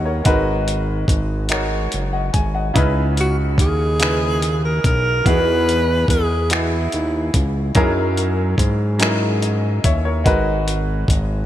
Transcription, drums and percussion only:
0.25 kick, closed hi-hat
0.68 closed hi-hat
1.08 kick, closed hi-hat
1.49 finger snap, closed hi-hat
1.92 closed hi-hat
2.34 kick, closed hi-hat
2.76 kick, closed hi-hat
3.17 closed hi-hat
3.58 kick, closed hi-hat
4.00 finger snap, closed hi-hat
4.42 closed hi-hat
4.84 kick, closed hi-hat
5.26 kick, closed hi-hat
5.69 closed hi-hat
6.08 kick, closed hi-hat
6.50 finger snap, closed hi-hat
6.92 closed hi-hat
7.34 kick, closed hi-hat
7.75 kick, closed hi-hat
8.17 closed hi-hat
8.58 kick, closed hi-hat
9.00 finger snap, closed hi-hat
9.42 closed hi-hat
9.84 kick, closed hi-hat
10.26 kick, closed hi-hat
10.68 closed hi-hat
11.08 kick, closed hi-hat

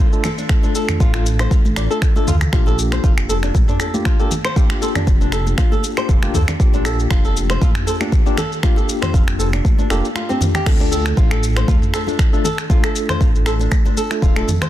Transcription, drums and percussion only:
0.13 shaker
0.24 finger snap, muted conga, high conga, low conga, shaker
0.38 shaker
0.49 finger snap, kick, shaker
0.63 muted conga, shaker
0.75 shaker
0.89 finger snap, mid tom, low conga, shaker
1.00 kick, muted conga, shaker
1.14 finger snap, shaker
1.26 shaker
1.39 finger snap, muted conga, shaker
1.51 kick, high conga, shaker
1.65 high conga, shaker
1.76 finger snap, muted conga, shaker
1.91 shaker
2.02 finger snap, kick, shaker
2.16 high conga, shaker
2.27 mid tom, muted conga, low conga, shaker
2.41 finger snap, low conga, shaker
2.53 finger snap, kick, shaker
2.66 muted conga, shaker
2.79 shaker
2.92 finger snap, shaker
3.04 kick, muted conga, shaker
3.18 finger snap, shaker
3.30 shaker
3.43 finger snap, muted conga, shaker
3.54 kick, high conga, shaker
3.68 mid tom, shaker
3.80 finger snap, muted conga, shaker
3.94 high conga, shaker
4.05 finger snap, kick, shaker
4.20 shaker
4.31 muted conga, high conga, low conga, shaker
4.45 finger snap, shaker
4.56 kick, high conga, shaker
4.70 finger snap, muted conga, shaker
4.82 shaker
4.96 finger snap, mid tom, low conga, shaker
5.07 kick, muted conga, shaker
5.21 shaker
5.32 finger snap, shaker
5.47 muted conga, shaker
5.58 finger snap, kick, high conga, shaker
5.72 high conga, shaker
5.83 muted conga, shaker
5.97 finger snap, shaker
6.09 kick, shaker
6.23 finger snap, high conga, shaker
6.34 mid tom, muted conga, low conga, shaker
6.48 finger snap, low conga, shaker
6.60 kick, shaker
6.73 muted conga, shaker
6.85 finger snap, shaker
6.99 shaker
7.11 finger snap, kick, shaker
7.25 shaker
7.37 shaker
7.50 finger snap, muted conga, shaker
7.62 kick, high conga, shaker
7.75 finger snap, mid tom, shaker
7.87 muted conga, shaker
8.00 finger snap, high conga, shaker
8.12 kick, shaker
8.27 shaker
8.38 finger snap, muted conga, high conga, low conga, shaker
8.52 shaker
8.63 finger snap, kick, high conga, shaker
8.76 muted conga, shaker
8.89 shaker
9.02 finger snap, mid tom, low conga, shaker
9.14 kick, muted conga, shaker
9.28 finger snap, shaker
9.40 shaker
9.53 finger snap, muted conga, shaker
9.65 kick, high conga, shaker
9.79 high conga, shaker
9.90 finger snap, muted conga, high conga, shaker
10.05 shaker
10.15 finger snap, high conga, shaker
10.30 high conga, shaker
10.41 mid tom, muted conga, low conga, shaker
10.55 finger snap, low conga, shaker
10.66 finger snap, kick, crash, shaker
10.80 muted conga, shaker
10.92 shaker
11.06 finger snap, shaker
11.17 kick, muted conga, shaker
11.31 finger snap, shaker
11.43 shaker
11.57 finger snap, muted conga, shaker
11.68 kick, high conga, shaker
11.82 mid tom, shaker
11.94 finger snap, muted conga, shaker
12.07 high conga, shaker
12.19 finger snap, kick, shaker
12.34 shaker
12.44 muted conga, high conga, low conga, shaker
12.58 finger snap, shaker
12.70 kick, high conga, shaker
12.84 finger snap, muted conga, shaker
12.96 shaker
13.09 finger snap, mid tom, low conga, shaker
13.21 kick, muted conga, shaker
13.35 shaker
13.46 finger snap, shaker
13.59 muted conga, shaker
13.71 finger snap, kick, high conga, shaker
13.85 high conga, shaker
13.97 muted conga, shaker
14.11 finger snap, shaker
14.22 kick, shaker
14.36 finger snap, high conga, shaker
14.48 mid tom, muted conga, low conga, shaker
14.62 finger snap, low conga, shaker

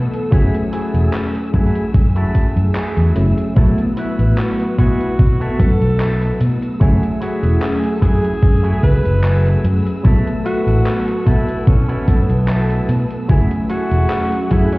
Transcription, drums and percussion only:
0.14 closed hi-hat
0.32 kick, closed hi-hat
0.54 closed hi-hat
0.73 closed hi-hat
0.95 closed hi-hat
1.13 clap, closed hi-hat
1.35 closed hi-hat
1.54 kick, closed hi-hat
1.75 closed hi-hat
1.94 kick, closed hi-hat
2.16 closed hi-hat
2.35 kick, closed hi-hat
2.57 closed hi-hat
2.75 clap, closed hi-hat
2.97 closed hi-hat
3.16 closed hi-hat
3.38 closed hi-hat
3.56 kick, closed hi-hat
3.78 closed hi-hat
3.97 closed hi-hat
4.19 closed hi-hat
4.38 clap, closed hi-hat
4.60 closed hi-hat
4.78 kick, closed hi-hat
5.00 closed hi-hat
5.19 kick, closed hi-hat
5.41 closed hi-hat
5.59 kick, closed hi-hat
5.82 closed hi-hat
6.00 clap, closed hi-hat
6.22 closed hi-hat
6.41 closed hi-hat
6.62 closed hi-hat
6.81 kick, closed hi-hat
7.03 closed hi-hat
7.22 closed hi-hat
7.43 closed hi-hat
7.62 clap, closed hi-hat
7.84 closed hi-hat
8.02 kick, closed hi-hat
8.25 closed hi-hat
8.43 kick, closed hi-hat
8.65 closed hi-hat
8.83 kick, closed hi-hat
9.05 closed hi-hat
9.24 clap, closed hi-hat
9.46 closed hi-hat
9.65 closed hi-hat
9.87 closed hi-hat
10.05 kick, closed hi-hat
10.27 closed hi-hat
10.46 closed hi-hat
10.68 closed hi-hat
10.86 clap, closed hi-hat
11.08 closed hi-hat
11.27 kick, closed hi-hat
11.48 closed hi-hat
11.67 kick, closed hi-hat
11.89 closed hi-hat
12.08 kick, closed hi-hat
12.29 closed hi-hat
12.48 clap, closed hi-hat
12.70 closed hi-hat
12.89 closed hi-hat
13.10 closed hi-hat
13.29 kick, closed hi-hat
13.51 closed hi-hat
13.70 closed hi-hat
13.91 closed hi-hat
14.10 clap, closed hi-hat
14.32 closed hi-hat
14.51 kick, closed hi-hat
14.72 closed hi-hat

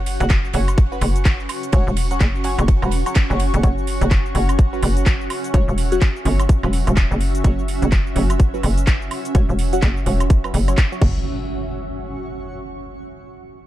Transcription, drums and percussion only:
0.06 open hi-hat, ride
0.20 closed hi-hat, shaker
0.30 kick, snare, clap, closed hi-hat, ride, shaker
0.45 shaker
0.53 open hi-hat, ride
0.68 closed hi-hat, high woodblock, shaker
0.78 kick, closed hi-hat, ride, shaker
0.92 shaker
1.01 open hi-hat, ride, high woodblock
1.16 closed hi-hat, shaker
1.25 kick, snare, clap, closed hi-hat, ride, shaker
1.40 shaker
1.49 open hi-hat, ride, high woodblock
1.63 closed hi-hat, shaker
1.72 kick, closed hi-hat, ride, shaker
1.88 shaker
1.97 open hi-hat, ride
2.11 closed hi-hat, shaker
2.20 kick, snare, clap, closed hi-hat, ride, shaker
2.35 shaker
2.44 open hi-hat, ride
2.59 closed hi-hat, high woodblock, shaker
2.68 kick, closed hi-hat, ride, shaker
2.82 high woodblock, shaker
2.91 open hi-hat, ride
3.06 closed hi-hat, high woodblock, shaker
3.15 kick, snare, clap, closed hi-hat, ride, shaker
3.31 shaker
3.39 snare, open hi-hat, ride
3.54 closed hi-hat, ride, shaker
3.63 kick, closed hi-hat, shaker
3.78 shaker
3.87 open hi-hat
4.01 closed hi-hat, shaker
4.11 kick, clap, closed hi-hat, shaker
4.26 shaker
4.35 open hi-hat
4.49 closed hi-hat, high woodblock, shaker
4.59 kick, closed hi-hat, shaker
4.73 shaker
4.83 open hi-hat, high woodblock
4.97 closed hi-hat, shaker
5.06 kick, clap, closed hi-hat, shaker
5.21 shaker
5.30 open hi-hat, high woodblock
5.44 closed hi-hat, shaker
5.54 kick, closed hi-hat, shaker
5.69 shaker
5.78 open hi-hat
5.92 closed hi-hat, shaker
6.01 kick, clap, closed hi-hat, shaker
6.16 shaker
6.25 open hi-hat
6.40 closed hi-hat, high woodblock, shaker
6.49 kick, closed hi-hat, shaker
6.63 high woodblock, shaker
6.73 open hi-hat
6.87 closed hi-hat, high woodblock, shaker
6.96 kick, clap, closed hi-hat, shaker
7.11 shaker
7.21 open hi-hat
7.35 closed hi-hat, shaker
7.44 kick, closed hi-hat, shaker
7.59 shaker
7.68 open hi-hat
7.82 closed hi-hat, shaker
7.92 kick, clap, closed hi-hat, shaker
8.07 shaker
8.16 open hi-hat
8.30 closed hi-hat, high woodblock, shaker
8.40 kick, closed hi-hat, shaker
8.54 shaker
8.63 open hi-hat, high woodblock
8.78 closed hi-hat, shaker
8.87 kick, clap, closed hi-hat, shaker
9.02 shaker
9.11 open hi-hat, high woodblock
9.25 closed hi-hat, shaker
9.35 kick, closed hi-hat, shaker
9.50 shaker
9.59 open hi-hat
9.73 closed hi-hat, shaker
9.82 kick, clap, closed hi-hat, shaker
9.97 shaker
10.06 open hi-hat
10.20 closed hi-hat, high woodblock, shaker
10.30 kick, closed hi-hat, shaker
10.44 high woodblock, shaker
10.54 open hi-hat
10.68 closed hi-hat, high woodblock, shaker
10.77 kick, clap, closed hi-hat, shaker
10.92 shaker
11.02 kick, crash

